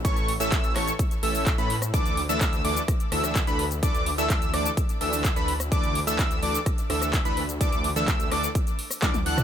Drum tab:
HH |xxoxxxoxxxooxxox|xxoxxxoxxxoxxxox|xxoxxxoxxxooxxox|xxoxxxoxxxoxxxox|
SH |xx-xxx-xxx-xxx-x|xx-xxx-xxx-xxx-x|xx-xxx-xxx-xxx-x|xx-xxx-xxx-xxx-x|
CP |----x-x-----x---|----x-------x---|----x-------x---|----x-------x---|
SD |------r--------r|--------r-rr----|------r--------r|--------r-rr----|
T1 |----------------|----------------|----------------|----------------|
T2 |----------------|----------------|----------------|----------------|
BD |o---o---o---o---|o---o---o---o---|o---o---o---o---|o---o---o---o---|

HH |xxoxxxoxxxooxxox|
SH |xx-xxx-xxx-xxx-x|
CP |----x-x-----x---|
SD |------r----r---r|
T1 |------------oo--|
T2 |---------------o|
BD |o---o---o---o---|